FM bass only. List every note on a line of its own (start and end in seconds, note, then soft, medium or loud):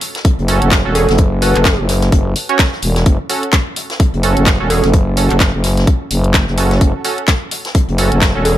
0.38 0.60 F#1 medium
0.62 0.83 F#1 loud
0.85 1.07 E1 medium
1.09 1.53 F#1 loud
1.56 1.77 F#1 medium
1.79 2.11 F#1 loud
2.12 2.34 F#1 loud
2.83 3.04 E1 loud
3.06 3.17 F#1 medium
4.13 4.35 F#1 loud
4.37 4.58 F#1 loud
4.60 4.82 E1 medium
4.84 5.28 F#1 loud
5.31 5.52 F#1 medium
5.54 5.86 F#1 loud
6.11 6.46 F#1 medium
6.48 6.79 F#1 loud
6.81 6.92 F#1 medium
7.88 8.10 F#1 loud
8.12 8.33 F#1 loud
8.35 8.57 E1 loud